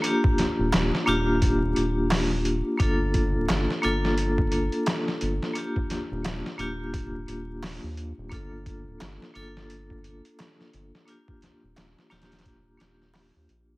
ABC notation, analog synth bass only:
X:1
M:4/4
L:1/16
Q:"Swing 16ths" 1/4=87
K:Eblyd
V:1 name="Analog synth bass" clef=bass
z3 E,,, E,,, z E,,,4 E,,,4- E,,, z | G,,,3 D,,, G,,, z G,,,4- G,,, z3 G,,, z | z3 E,,, E,,, z E,,,4 E,,,3 E,,2 E,,, | G,,,3 D,,, G,,, z G,,,4- G,,, z3 G,,, z |
z3 E,,, E,,, z E,,,4 E,,,3 E,, B,,,2 |]